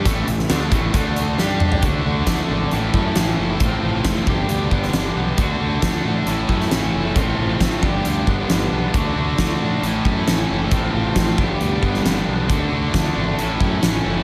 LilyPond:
<<
  \new Staff \with { instrumentName = "Tonewheel organ" } { \time 4/4 \key a \major \tempo 4 = 135 <cis' e' a' e''>2 <d' a' d''>4 <d' g' d''>4 | <a d' fis' d''>2 \tuplet 3/2 { <bes d' f' d''>8 <a cis' e' cis''>4~ } <a cis' e' cis''>4 | <a c' f' c''>4. <b d' g' d''>2~ <b d' g' d''>8 | <a d' fis' d''>2 <a cis' e' cis''>2 |
<a c' f' c''>4. <b d' g' d''>2~ <b d' g' d''>8 | <a d' fis' d''>2 <a cis' e' cis''>2 | <a c' f' c''>4. <b d' g' d''>2~ <b d' g' d''>8 | \tuplet 3/2 { <bes dis' g' dis''>8 <a d' fis' d''>4~ } <a d' fis' d''>4 <a cis' e' cis''>2 | }
  \new Staff \with { instrumentName = "Distorted electric guitar" } { \time 4/4 \key a \major <a, e a>8 <a, e>8 <d a d'>8 <a, e a>8 <d a d'>4 <g d' g'>4 | <d a d' fis'>2 <a, e a cis' e'>2 | <a, f a c' f'>4. <g, d g b d' g'>2~ <g, d g b d' g'>8 | <d a d' fis'>2 <a, e a cis' e'>2 |
<a, f a c' f'>4. <g, d g b d' g'>2~ <g, d g b d' g'>8 | <d a d' fis'>2 <a, e a cis' e'>2 | <a, f a c' f'>4. <g, d g b d' g'>2~ <g, d g b d' g'>8 | <d a d' fis'>2 <a, e a cis' e'>2 | }
  \new Staff \with { instrumentName = "Overdriven electric guitar" } { \time 4/4 \key a \major <a, e a>8 <a, e>8 <d a d'>8 <a, e a>8 <d a d'>4 <g d' g'>4 | d8 d8 a8 d'8 a,8 a8 cis'8 a8 | a,8 f8 a8 g,8 g8 b8 d'8 b8 | d8 d8 a8 d'8 a,8 a8 cis'8 a8 |
a,8 f8 a8 g,8 g8 b8 d'8 b8 | d8 d8 a8 d'8 a,8 a8 cis'8 a8 | a,8 f8 a8 g,8 g8 b8 d'8 b8 | d8 d8 a8 d'8 a,8 a8 cis'8 a8 | }
  \new Staff \with { instrumentName = "Fingered electric bass" } { \clef bass \time 4/4 \key a \major a,,8 a,,8 d,8 a,,8 d,4 g,4 | d,8 d,8 d,8 gis,,8 a,,8 fis,8 a,,8 fis,,8 | a,,8 a,,8 f,,8 g,,8 d,8 g,,8 g,,8 b,,8 | d,8 d,8 d,8 a,8 a,,8 fis,8 a,,8 fis,,8 |
a,,8 a,,8 a,,8 g,,8 d,8 g,,8 g,,8 b,,8 | d,8 d,8 d,8 a,8 a,,8 fis,8 a,,8 fis,,8 | a,,8 a,,8 a,,8 g,,8 d,8 g,,8 g,,8 b,,8 | d,8 d,8 d,8 gis,,8 a,,8 fis,8 a,,8 fis,,8 | }
  \new DrumStaff \with { instrumentName = "Drums" } \drummode { \time 4/4 <hh bd>8 hh16 sn16 <hh sn>8 <hh bd>8 <hh bd>8 hh8 sn8 toml16 tomfh16 | <hh bd>4 <hh bd sn>4 hh8 bd8 <hh sn>4 | <hh bd>4 <hh bd sn>8 bd8 hh8 bd16 sn16 <hh sn>4 | <hh bd>4 <hh bd sn>4 hh8 bd16 sn16 <hh sn>4 |
<hh bd>4 <hh bd sn>8 bd8 hh8 bd8 <hh sn>4 | <hh bd>4 <hh bd sn>4 hh8 bd8 <hh sn>4 | <hh bd>4 <hh bd sn>8 bd8 hh8 bd16 sn16 <hh sn>4 | <hh bd>4 <hh bd sn>4 hh8 bd8 <hh sn>4 | }
>>